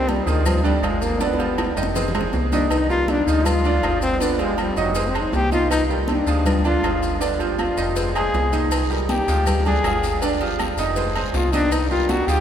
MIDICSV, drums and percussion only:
0, 0, Header, 1, 2, 480
1, 0, Start_track
1, 0, Key_signature, -3, "minor"
1, 0, Tempo, 375235
1, 1545, Time_signature, 4, 2, 24, 8
1, 15866, End_track
2, 0, Start_track
2, 0, Title_t, "Drums"
2, 106, Note_on_c, 9, 56, 71
2, 110, Note_on_c, 9, 66, 62
2, 110, Note_on_c, 9, 68, 85
2, 110, Note_on_c, 9, 70, 30
2, 111, Note_on_c, 9, 63, 99
2, 234, Note_off_c, 9, 56, 0
2, 238, Note_off_c, 9, 66, 0
2, 238, Note_off_c, 9, 68, 0
2, 238, Note_off_c, 9, 70, 0
2, 239, Note_off_c, 9, 63, 0
2, 348, Note_on_c, 9, 70, 80
2, 476, Note_off_c, 9, 70, 0
2, 585, Note_on_c, 9, 70, 95
2, 587, Note_on_c, 9, 56, 111
2, 587, Note_on_c, 9, 75, 70
2, 591, Note_on_c, 9, 63, 36
2, 591, Note_on_c, 9, 64, 87
2, 593, Note_on_c, 9, 68, 107
2, 713, Note_off_c, 9, 70, 0
2, 715, Note_off_c, 9, 56, 0
2, 715, Note_off_c, 9, 75, 0
2, 719, Note_off_c, 9, 63, 0
2, 719, Note_off_c, 9, 64, 0
2, 720, Note_off_c, 9, 68, 0
2, 829, Note_on_c, 9, 70, 30
2, 831, Note_on_c, 9, 63, 35
2, 833, Note_on_c, 9, 68, 86
2, 957, Note_off_c, 9, 70, 0
2, 959, Note_off_c, 9, 63, 0
2, 961, Note_off_c, 9, 68, 0
2, 1064, Note_on_c, 9, 56, 67
2, 1067, Note_on_c, 9, 63, 35
2, 1067, Note_on_c, 9, 75, 70
2, 1069, Note_on_c, 9, 70, 29
2, 1073, Note_on_c, 9, 66, 89
2, 1073, Note_on_c, 9, 68, 113
2, 1192, Note_off_c, 9, 56, 0
2, 1195, Note_off_c, 9, 63, 0
2, 1195, Note_off_c, 9, 75, 0
2, 1197, Note_off_c, 9, 70, 0
2, 1201, Note_off_c, 9, 66, 0
2, 1201, Note_off_c, 9, 68, 0
2, 1302, Note_on_c, 9, 70, 71
2, 1303, Note_on_c, 9, 56, 73
2, 1309, Note_on_c, 9, 63, 34
2, 1430, Note_off_c, 9, 70, 0
2, 1431, Note_off_c, 9, 56, 0
2, 1437, Note_off_c, 9, 63, 0
2, 1539, Note_on_c, 9, 70, 96
2, 1545, Note_on_c, 9, 56, 104
2, 1545, Note_on_c, 9, 60, 74
2, 1550, Note_on_c, 9, 65, 87
2, 1550, Note_on_c, 9, 68, 84
2, 1552, Note_on_c, 9, 63, 37
2, 1667, Note_off_c, 9, 70, 0
2, 1673, Note_off_c, 9, 56, 0
2, 1673, Note_off_c, 9, 60, 0
2, 1678, Note_off_c, 9, 65, 0
2, 1678, Note_off_c, 9, 68, 0
2, 1680, Note_off_c, 9, 63, 0
2, 1710, Note_on_c, 9, 60, 85
2, 1786, Note_on_c, 9, 70, 29
2, 1788, Note_on_c, 9, 68, 74
2, 1790, Note_on_c, 9, 63, 36
2, 1838, Note_off_c, 9, 60, 0
2, 1914, Note_off_c, 9, 70, 0
2, 1916, Note_off_c, 9, 68, 0
2, 1918, Note_off_c, 9, 63, 0
2, 2023, Note_on_c, 9, 70, 30
2, 2024, Note_on_c, 9, 66, 86
2, 2024, Note_on_c, 9, 68, 108
2, 2024, Note_on_c, 9, 75, 69
2, 2025, Note_on_c, 9, 63, 59
2, 2028, Note_on_c, 9, 56, 73
2, 2028, Note_on_c, 9, 60, 102
2, 2151, Note_off_c, 9, 66, 0
2, 2151, Note_off_c, 9, 68, 0
2, 2151, Note_off_c, 9, 70, 0
2, 2152, Note_off_c, 9, 75, 0
2, 2153, Note_off_c, 9, 63, 0
2, 2156, Note_off_c, 9, 56, 0
2, 2156, Note_off_c, 9, 60, 0
2, 2263, Note_on_c, 9, 56, 74
2, 2268, Note_on_c, 9, 70, 77
2, 2269, Note_on_c, 9, 63, 36
2, 2269, Note_on_c, 9, 66, 77
2, 2341, Note_on_c, 9, 61, 97
2, 2391, Note_off_c, 9, 56, 0
2, 2395, Note_off_c, 9, 70, 0
2, 2397, Note_off_c, 9, 63, 0
2, 2397, Note_off_c, 9, 66, 0
2, 2469, Note_off_c, 9, 61, 0
2, 2501, Note_on_c, 9, 70, 93
2, 2505, Note_on_c, 9, 56, 113
2, 2505, Note_on_c, 9, 61, 109
2, 2506, Note_on_c, 9, 63, 35
2, 2511, Note_on_c, 9, 68, 75
2, 2629, Note_off_c, 9, 70, 0
2, 2632, Note_off_c, 9, 56, 0
2, 2632, Note_off_c, 9, 61, 0
2, 2634, Note_off_c, 9, 63, 0
2, 2638, Note_off_c, 9, 68, 0
2, 2664, Note_on_c, 9, 61, 106
2, 2743, Note_on_c, 9, 70, 29
2, 2745, Note_on_c, 9, 63, 35
2, 2747, Note_on_c, 9, 66, 89
2, 2747, Note_on_c, 9, 68, 106
2, 2750, Note_on_c, 9, 75, 70
2, 2792, Note_off_c, 9, 61, 0
2, 2823, Note_on_c, 9, 61, 84
2, 2871, Note_off_c, 9, 70, 0
2, 2873, Note_off_c, 9, 63, 0
2, 2875, Note_off_c, 9, 66, 0
2, 2875, Note_off_c, 9, 68, 0
2, 2878, Note_off_c, 9, 75, 0
2, 2951, Note_off_c, 9, 61, 0
2, 2979, Note_on_c, 9, 56, 69
2, 2979, Note_on_c, 9, 61, 79
2, 2983, Note_on_c, 9, 63, 85
2, 2986, Note_on_c, 9, 70, 29
2, 2993, Note_on_c, 9, 66, 72
2, 3107, Note_off_c, 9, 56, 0
2, 3107, Note_off_c, 9, 61, 0
2, 3110, Note_off_c, 9, 63, 0
2, 3114, Note_off_c, 9, 70, 0
2, 3121, Note_off_c, 9, 66, 0
2, 3224, Note_on_c, 9, 63, 82
2, 3229, Note_on_c, 9, 70, 68
2, 3232, Note_on_c, 9, 66, 91
2, 3232, Note_on_c, 9, 68, 68
2, 3300, Note_on_c, 9, 61, 79
2, 3352, Note_off_c, 9, 63, 0
2, 3357, Note_off_c, 9, 70, 0
2, 3360, Note_off_c, 9, 66, 0
2, 3360, Note_off_c, 9, 68, 0
2, 3428, Note_off_c, 9, 61, 0
2, 3461, Note_on_c, 9, 68, 107
2, 3466, Note_on_c, 9, 56, 104
2, 3466, Note_on_c, 9, 75, 67
2, 3469, Note_on_c, 9, 63, 37
2, 3469, Note_on_c, 9, 70, 94
2, 3589, Note_off_c, 9, 68, 0
2, 3594, Note_off_c, 9, 56, 0
2, 3594, Note_off_c, 9, 75, 0
2, 3597, Note_off_c, 9, 63, 0
2, 3597, Note_off_c, 9, 70, 0
2, 3709, Note_on_c, 9, 63, 37
2, 3711, Note_on_c, 9, 70, 30
2, 3837, Note_off_c, 9, 63, 0
2, 3839, Note_off_c, 9, 70, 0
2, 3942, Note_on_c, 9, 63, 101
2, 3945, Note_on_c, 9, 66, 64
2, 3945, Note_on_c, 9, 68, 86
2, 3948, Note_on_c, 9, 56, 68
2, 3951, Note_on_c, 9, 70, 31
2, 4070, Note_off_c, 9, 63, 0
2, 4073, Note_off_c, 9, 66, 0
2, 4073, Note_off_c, 9, 68, 0
2, 4076, Note_off_c, 9, 56, 0
2, 4079, Note_off_c, 9, 70, 0
2, 4193, Note_on_c, 9, 70, 78
2, 4321, Note_off_c, 9, 70, 0
2, 4419, Note_on_c, 9, 63, 36
2, 4419, Note_on_c, 9, 64, 91
2, 4422, Note_on_c, 9, 70, 93
2, 4425, Note_on_c, 9, 68, 110
2, 4428, Note_on_c, 9, 56, 106
2, 4431, Note_on_c, 9, 75, 67
2, 4547, Note_off_c, 9, 63, 0
2, 4547, Note_off_c, 9, 64, 0
2, 4550, Note_off_c, 9, 70, 0
2, 4553, Note_off_c, 9, 68, 0
2, 4555, Note_off_c, 9, 56, 0
2, 4559, Note_off_c, 9, 75, 0
2, 4656, Note_on_c, 9, 63, 37
2, 4661, Note_on_c, 9, 68, 84
2, 4665, Note_on_c, 9, 70, 31
2, 4784, Note_off_c, 9, 63, 0
2, 4789, Note_off_c, 9, 68, 0
2, 4793, Note_off_c, 9, 70, 0
2, 4895, Note_on_c, 9, 63, 33
2, 4901, Note_on_c, 9, 70, 29
2, 4904, Note_on_c, 9, 66, 92
2, 4904, Note_on_c, 9, 68, 108
2, 4910, Note_on_c, 9, 56, 72
2, 4916, Note_on_c, 9, 75, 75
2, 5023, Note_off_c, 9, 63, 0
2, 5029, Note_off_c, 9, 70, 0
2, 5031, Note_off_c, 9, 66, 0
2, 5031, Note_off_c, 9, 68, 0
2, 5038, Note_off_c, 9, 56, 0
2, 5044, Note_off_c, 9, 75, 0
2, 5134, Note_on_c, 9, 63, 34
2, 5139, Note_on_c, 9, 70, 67
2, 5148, Note_on_c, 9, 56, 77
2, 5261, Note_off_c, 9, 63, 0
2, 5267, Note_off_c, 9, 70, 0
2, 5276, Note_off_c, 9, 56, 0
2, 5376, Note_on_c, 9, 68, 89
2, 5377, Note_on_c, 9, 63, 38
2, 5379, Note_on_c, 9, 56, 103
2, 5389, Note_on_c, 9, 70, 98
2, 5504, Note_off_c, 9, 68, 0
2, 5505, Note_off_c, 9, 63, 0
2, 5507, Note_off_c, 9, 56, 0
2, 5517, Note_off_c, 9, 70, 0
2, 5617, Note_on_c, 9, 63, 36
2, 5618, Note_on_c, 9, 68, 76
2, 5624, Note_on_c, 9, 70, 29
2, 5745, Note_off_c, 9, 63, 0
2, 5746, Note_off_c, 9, 68, 0
2, 5752, Note_off_c, 9, 70, 0
2, 5856, Note_on_c, 9, 66, 61
2, 5856, Note_on_c, 9, 68, 112
2, 5860, Note_on_c, 9, 63, 62
2, 5862, Note_on_c, 9, 70, 31
2, 5866, Note_on_c, 9, 56, 71
2, 5872, Note_on_c, 9, 75, 66
2, 5984, Note_off_c, 9, 66, 0
2, 5984, Note_off_c, 9, 68, 0
2, 5988, Note_off_c, 9, 63, 0
2, 5990, Note_off_c, 9, 70, 0
2, 5994, Note_off_c, 9, 56, 0
2, 6000, Note_off_c, 9, 75, 0
2, 6099, Note_on_c, 9, 63, 36
2, 6099, Note_on_c, 9, 70, 81
2, 6103, Note_on_c, 9, 56, 72
2, 6227, Note_off_c, 9, 63, 0
2, 6227, Note_off_c, 9, 70, 0
2, 6231, Note_off_c, 9, 56, 0
2, 6330, Note_on_c, 9, 70, 93
2, 6335, Note_on_c, 9, 63, 36
2, 6341, Note_on_c, 9, 68, 74
2, 6343, Note_on_c, 9, 56, 119
2, 6458, Note_off_c, 9, 70, 0
2, 6463, Note_off_c, 9, 63, 0
2, 6469, Note_off_c, 9, 68, 0
2, 6470, Note_off_c, 9, 56, 0
2, 6572, Note_on_c, 9, 63, 33
2, 6586, Note_on_c, 9, 70, 31
2, 6589, Note_on_c, 9, 75, 66
2, 6592, Note_on_c, 9, 68, 110
2, 6700, Note_off_c, 9, 63, 0
2, 6714, Note_off_c, 9, 70, 0
2, 6717, Note_off_c, 9, 75, 0
2, 6720, Note_off_c, 9, 68, 0
2, 6813, Note_on_c, 9, 63, 82
2, 6822, Note_on_c, 9, 66, 90
2, 6825, Note_on_c, 9, 70, 32
2, 6826, Note_on_c, 9, 56, 70
2, 6941, Note_off_c, 9, 63, 0
2, 6950, Note_off_c, 9, 66, 0
2, 6953, Note_off_c, 9, 70, 0
2, 6954, Note_off_c, 9, 56, 0
2, 7052, Note_on_c, 9, 63, 80
2, 7064, Note_on_c, 9, 68, 70
2, 7067, Note_on_c, 9, 70, 69
2, 7180, Note_off_c, 9, 63, 0
2, 7192, Note_off_c, 9, 68, 0
2, 7195, Note_off_c, 9, 70, 0
2, 7298, Note_on_c, 9, 63, 36
2, 7299, Note_on_c, 9, 56, 106
2, 7302, Note_on_c, 9, 75, 71
2, 7308, Note_on_c, 9, 68, 109
2, 7309, Note_on_c, 9, 70, 94
2, 7426, Note_off_c, 9, 63, 0
2, 7427, Note_off_c, 9, 56, 0
2, 7430, Note_off_c, 9, 75, 0
2, 7436, Note_off_c, 9, 68, 0
2, 7437, Note_off_c, 9, 70, 0
2, 7538, Note_on_c, 9, 63, 37
2, 7549, Note_on_c, 9, 70, 30
2, 7666, Note_off_c, 9, 63, 0
2, 7677, Note_off_c, 9, 70, 0
2, 7772, Note_on_c, 9, 63, 106
2, 7784, Note_on_c, 9, 70, 32
2, 7785, Note_on_c, 9, 66, 61
2, 7785, Note_on_c, 9, 68, 92
2, 7792, Note_on_c, 9, 56, 73
2, 7899, Note_off_c, 9, 63, 0
2, 7912, Note_off_c, 9, 70, 0
2, 7913, Note_off_c, 9, 66, 0
2, 7913, Note_off_c, 9, 68, 0
2, 7920, Note_off_c, 9, 56, 0
2, 8020, Note_on_c, 9, 70, 76
2, 8147, Note_off_c, 9, 70, 0
2, 8259, Note_on_c, 9, 63, 35
2, 8259, Note_on_c, 9, 64, 91
2, 8262, Note_on_c, 9, 70, 95
2, 8266, Note_on_c, 9, 68, 104
2, 8267, Note_on_c, 9, 56, 107
2, 8272, Note_on_c, 9, 75, 67
2, 8387, Note_off_c, 9, 63, 0
2, 8387, Note_off_c, 9, 64, 0
2, 8390, Note_off_c, 9, 70, 0
2, 8394, Note_off_c, 9, 68, 0
2, 8395, Note_off_c, 9, 56, 0
2, 8399, Note_off_c, 9, 75, 0
2, 8504, Note_on_c, 9, 68, 89
2, 8507, Note_on_c, 9, 70, 33
2, 8632, Note_off_c, 9, 68, 0
2, 8635, Note_off_c, 9, 70, 0
2, 8744, Note_on_c, 9, 56, 67
2, 8748, Note_on_c, 9, 63, 36
2, 8751, Note_on_c, 9, 66, 89
2, 8751, Note_on_c, 9, 68, 113
2, 8751, Note_on_c, 9, 75, 73
2, 8756, Note_on_c, 9, 70, 28
2, 8872, Note_off_c, 9, 56, 0
2, 8876, Note_off_c, 9, 63, 0
2, 8879, Note_off_c, 9, 66, 0
2, 8879, Note_off_c, 9, 68, 0
2, 8879, Note_off_c, 9, 75, 0
2, 8884, Note_off_c, 9, 70, 0
2, 8983, Note_on_c, 9, 63, 33
2, 8988, Note_on_c, 9, 56, 74
2, 8990, Note_on_c, 9, 70, 69
2, 9111, Note_off_c, 9, 63, 0
2, 9115, Note_off_c, 9, 56, 0
2, 9118, Note_off_c, 9, 70, 0
2, 9223, Note_on_c, 9, 63, 35
2, 9227, Note_on_c, 9, 56, 105
2, 9227, Note_on_c, 9, 70, 93
2, 9232, Note_on_c, 9, 68, 89
2, 9351, Note_off_c, 9, 63, 0
2, 9355, Note_off_c, 9, 56, 0
2, 9355, Note_off_c, 9, 70, 0
2, 9360, Note_off_c, 9, 68, 0
2, 9461, Note_on_c, 9, 63, 38
2, 9469, Note_on_c, 9, 68, 70
2, 9473, Note_on_c, 9, 70, 30
2, 9589, Note_off_c, 9, 63, 0
2, 9597, Note_off_c, 9, 68, 0
2, 9601, Note_off_c, 9, 70, 0
2, 9703, Note_on_c, 9, 56, 70
2, 9706, Note_on_c, 9, 63, 64
2, 9707, Note_on_c, 9, 70, 32
2, 9710, Note_on_c, 9, 75, 67
2, 9713, Note_on_c, 9, 66, 62
2, 9713, Note_on_c, 9, 68, 107
2, 9831, Note_off_c, 9, 56, 0
2, 9833, Note_off_c, 9, 63, 0
2, 9835, Note_off_c, 9, 70, 0
2, 9838, Note_off_c, 9, 75, 0
2, 9841, Note_off_c, 9, 66, 0
2, 9841, Note_off_c, 9, 68, 0
2, 9946, Note_on_c, 9, 70, 79
2, 9947, Note_on_c, 9, 63, 36
2, 9948, Note_on_c, 9, 56, 68
2, 10074, Note_off_c, 9, 70, 0
2, 10075, Note_off_c, 9, 63, 0
2, 10076, Note_off_c, 9, 56, 0
2, 10181, Note_on_c, 9, 70, 95
2, 10186, Note_on_c, 9, 56, 115
2, 10189, Note_on_c, 9, 63, 38
2, 10194, Note_on_c, 9, 68, 73
2, 10309, Note_off_c, 9, 70, 0
2, 10314, Note_off_c, 9, 56, 0
2, 10317, Note_off_c, 9, 63, 0
2, 10322, Note_off_c, 9, 68, 0
2, 10429, Note_on_c, 9, 70, 31
2, 10430, Note_on_c, 9, 75, 65
2, 10431, Note_on_c, 9, 63, 34
2, 10439, Note_on_c, 9, 68, 112
2, 10557, Note_off_c, 9, 70, 0
2, 10558, Note_off_c, 9, 75, 0
2, 10559, Note_off_c, 9, 63, 0
2, 10567, Note_off_c, 9, 68, 0
2, 10668, Note_on_c, 9, 70, 30
2, 10672, Note_on_c, 9, 63, 87
2, 10675, Note_on_c, 9, 56, 69
2, 10680, Note_on_c, 9, 66, 88
2, 10796, Note_off_c, 9, 70, 0
2, 10800, Note_off_c, 9, 63, 0
2, 10803, Note_off_c, 9, 56, 0
2, 10808, Note_off_c, 9, 66, 0
2, 10907, Note_on_c, 9, 70, 69
2, 10912, Note_on_c, 9, 63, 80
2, 10916, Note_on_c, 9, 68, 71
2, 11035, Note_off_c, 9, 70, 0
2, 11040, Note_off_c, 9, 63, 0
2, 11044, Note_off_c, 9, 68, 0
2, 11146, Note_on_c, 9, 70, 94
2, 11151, Note_on_c, 9, 74, 71
2, 11152, Note_on_c, 9, 56, 106
2, 11152, Note_on_c, 9, 68, 112
2, 11153, Note_on_c, 9, 63, 38
2, 11156, Note_on_c, 9, 75, 69
2, 11274, Note_off_c, 9, 70, 0
2, 11279, Note_off_c, 9, 74, 0
2, 11280, Note_off_c, 9, 56, 0
2, 11280, Note_off_c, 9, 68, 0
2, 11281, Note_off_c, 9, 63, 0
2, 11283, Note_off_c, 9, 75, 0
2, 11390, Note_on_c, 9, 63, 37
2, 11390, Note_on_c, 9, 70, 31
2, 11518, Note_off_c, 9, 63, 0
2, 11518, Note_off_c, 9, 70, 0
2, 11627, Note_on_c, 9, 70, 32
2, 11629, Note_on_c, 9, 63, 96
2, 11633, Note_on_c, 9, 66, 63
2, 11633, Note_on_c, 9, 68, 87
2, 11634, Note_on_c, 9, 56, 70
2, 11634, Note_on_c, 9, 73, 76
2, 11755, Note_off_c, 9, 70, 0
2, 11757, Note_off_c, 9, 63, 0
2, 11761, Note_off_c, 9, 66, 0
2, 11761, Note_off_c, 9, 68, 0
2, 11761, Note_off_c, 9, 73, 0
2, 11762, Note_off_c, 9, 56, 0
2, 11874, Note_on_c, 9, 70, 74
2, 11874, Note_on_c, 9, 73, 73
2, 12002, Note_off_c, 9, 70, 0
2, 12002, Note_off_c, 9, 73, 0
2, 12107, Note_on_c, 9, 70, 96
2, 12111, Note_on_c, 9, 75, 69
2, 12113, Note_on_c, 9, 56, 116
2, 12116, Note_on_c, 9, 63, 36
2, 12116, Note_on_c, 9, 64, 92
2, 12118, Note_on_c, 9, 68, 110
2, 12120, Note_on_c, 9, 74, 78
2, 12235, Note_off_c, 9, 70, 0
2, 12238, Note_off_c, 9, 75, 0
2, 12241, Note_off_c, 9, 56, 0
2, 12244, Note_off_c, 9, 63, 0
2, 12244, Note_off_c, 9, 64, 0
2, 12246, Note_off_c, 9, 68, 0
2, 12248, Note_off_c, 9, 74, 0
2, 12350, Note_on_c, 9, 63, 37
2, 12350, Note_on_c, 9, 64, 73
2, 12355, Note_on_c, 9, 68, 90
2, 12355, Note_on_c, 9, 70, 30
2, 12478, Note_off_c, 9, 63, 0
2, 12478, Note_off_c, 9, 64, 0
2, 12483, Note_off_c, 9, 68, 0
2, 12483, Note_off_c, 9, 70, 0
2, 12589, Note_on_c, 9, 56, 70
2, 12591, Note_on_c, 9, 63, 37
2, 12591, Note_on_c, 9, 66, 90
2, 12591, Note_on_c, 9, 68, 116
2, 12592, Note_on_c, 9, 75, 73
2, 12596, Note_on_c, 9, 73, 74
2, 12598, Note_on_c, 9, 70, 30
2, 12717, Note_off_c, 9, 56, 0
2, 12718, Note_off_c, 9, 63, 0
2, 12719, Note_off_c, 9, 66, 0
2, 12719, Note_off_c, 9, 68, 0
2, 12720, Note_off_c, 9, 75, 0
2, 12724, Note_off_c, 9, 73, 0
2, 12726, Note_off_c, 9, 70, 0
2, 12831, Note_on_c, 9, 56, 73
2, 12839, Note_on_c, 9, 63, 37
2, 12839, Note_on_c, 9, 70, 72
2, 12840, Note_on_c, 9, 73, 73
2, 12959, Note_off_c, 9, 56, 0
2, 12967, Note_off_c, 9, 63, 0
2, 12967, Note_off_c, 9, 70, 0
2, 12968, Note_off_c, 9, 73, 0
2, 13070, Note_on_c, 9, 56, 102
2, 13074, Note_on_c, 9, 70, 93
2, 13078, Note_on_c, 9, 68, 90
2, 13078, Note_on_c, 9, 74, 75
2, 13079, Note_on_c, 9, 63, 38
2, 13198, Note_off_c, 9, 56, 0
2, 13202, Note_off_c, 9, 70, 0
2, 13206, Note_off_c, 9, 68, 0
2, 13206, Note_off_c, 9, 74, 0
2, 13207, Note_off_c, 9, 63, 0
2, 13309, Note_on_c, 9, 70, 30
2, 13313, Note_on_c, 9, 68, 76
2, 13317, Note_on_c, 9, 63, 36
2, 13437, Note_off_c, 9, 70, 0
2, 13441, Note_off_c, 9, 68, 0
2, 13445, Note_off_c, 9, 63, 0
2, 13545, Note_on_c, 9, 56, 72
2, 13552, Note_on_c, 9, 70, 32
2, 13553, Note_on_c, 9, 66, 62
2, 13553, Note_on_c, 9, 68, 107
2, 13554, Note_on_c, 9, 75, 70
2, 13557, Note_on_c, 9, 73, 77
2, 13560, Note_on_c, 9, 63, 60
2, 13673, Note_off_c, 9, 56, 0
2, 13680, Note_off_c, 9, 70, 0
2, 13681, Note_off_c, 9, 66, 0
2, 13681, Note_off_c, 9, 68, 0
2, 13682, Note_off_c, 9, 75, 0
2, 13685, Note_off_c, 9, 73, 0
2, 13688, Note_off_c, 9, 63, 0
2, 13786, Note_on_c, 9, 70, 79
2, 13787, Note_on_c, 9, 56, 70
2, 13795, Note_on_c, 9, 73, 69
2, 13803, Note_on_c, 9, 63, 35
2, 13914, Note_off_c, 9, 70, 0
2, 13915, Note_off_c, 9, 56, 0
2, 13923, Note_off_c, 9, 73, 0
2, 13931, Note_off_c, 9, 63, 0
2, 14019, Note_on_c, 9, 70, 98
2, 14020, Note_on_c, 9, 56, 112
2, 14035, Note_on_c, 9, 63, 36
2, 14037, Note_on_c, 9, 68, 69
2, 14037, Note_on_c, 9, 74, 80
2, 14147, Note_off_c, 9, 70, 0
2, 14148, Note_off_c, 9, 56, 0
2, 14163, Note_off_c, 9, 63, 0
2, 14165, Note_off_c, 9, 68, 0
2, 14165, Note_off_c, 9, 74, 0
2, 14267, Note_on_c, 9, 70, 30
2, 14270, Note_on_c, 9, 68, 116
2, 14270, Note_on_c, 9, 75, 71
2, 14274, Note_on_c, 9, 63, 35
2, 14395, Note_off_c, 9, 70, 0
2, 14398, Note_off_c, 9, 68, 0
2, 14398, Note_off_c, 9, 75, 0
2, 14402, Note_off_c, 9, 63, 0
2, 14506, Note_on_c, 9, 56, 70
2, 14507, Note_on_c, 9, 70, 30
2, 14507, Note_on_c, 9, 73, 77
2, 14508, Note_on_c, 9, 63, 83
2, 14512, Note_on_c, 9, 66, 88
2, 14634, Note_off_c, 9, 56, 0
2, 14635, Note_off_c, 9, 70, 0
2, 14635, Note_off_c, 9, 73, 0
2, 14636, Note_off_c, 9, 63, 0
2, 14640, Note_off_c, 9, 66, 0
2, 14745, Note_on_c, 9, 73, 76
2, 14750, Note_on_c, 9, 70, 69
2, 14756, Note_on_c, 9, 63, 87
2, 14761, Note_on_c, 9, 68, 72
2, 14873, Note_off_c, 9, 73, 0
2, 14877, Note_off_c, 9, 70, 0
2, 14884, Note_off_c, 9, 63, 0
2, 14888, Note_off_c, 9, 68, 0
2, 14986, Note_on_c, 9, 70, 100
2, 14987, Note_on_c, 9, 74, 75
2, 14988, Note_on_c, 9, 56, 102
2, 14991, Note_on_c, 9, 63, 37
2, 14993, Note_on_c, 9, 75, 67
2, 14995, Note_on_c, 9, 68, 110
2, 15114, Note_off_c, 9, 70, 0
2, 15115, Note_off_c, 9, 74, 0
2, 15116, Note_off_c, 9, 56, 0
2, 15119, Note_off_c, 9, 63, 0
2, 15121, Note_off_c, 9, 75, 0
2, 15123, Note_off_c, 9, 68, 0
2, 15229, Note_on_c, 9, 70, 30
2, 15233, Note_on_c, 9, 63, 36
2, 15357, Note_off_c, 9, 70, 0
2, 15361, Note_off_c, 9, 63, 0
2, 15463, Note_on_c, 9, 73, 78
2, 15468, Note_on_c, 9, 63, 101
2, 15471, Note_on_c, 9, 56, 70
2, 15476, Note_on_c, 9, 66, 65
2, 15476, Note_on_c, 9, 68, 84
2, 15480, Note_on_c, 9, 70, 30
2, 15591, Note_off_c, 9, 73, 0
2, 15596, Note_off_c, 9, 63, 0
2, 15599, Note_off_c, 9, 56, 0
2, 15604, Note_off_c, 9, 66, 0
2, 15604, Note_off_c, 9, 68, 0
2, 15608, Note_off_c, 9, 70, 0
2, 15709, Note_on_c, 9, 73, 75
2, 15717, Note_on_c, 9, 70, 76
2, 15837, Note_off_c, 9, 73, 0
2, 15845, Note_off_c, 9, 70, 0
2, 15866, End_track
0, 0, End_of_file